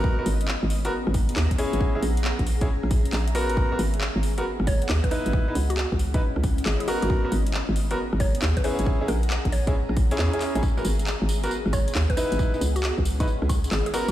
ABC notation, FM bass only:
X:1
M:4/4
L:1/16
Q:"Swing 16ths" 1/4=136
K:G#m
V:1 name="FM bass" clef=bass
z2 G,,,3 G,,,3 z G,,,3 D,, z2 G,,, | z2 A,,,3 A,,,3 z A,,,3 A,,,3 G,,,- | G,,,2 G,,,3 G,,,3 z G,,,3 D,, z2 G,,, | z2 C,,3 C,,3 z C,,3 G,,, z2 G,,, |
z2 G,,,3 G,,,3 z G,,,3 D,, z2 G,,, | z2 A,,,3 A,,,3 z A,,,3 E,, z2 A,,, | z2 G,,,3 G,,,3 z G,,,3 D,, z2 G,,, | z2 C,,3 C,,3 z C,,3 G,,, z2 G,,, |]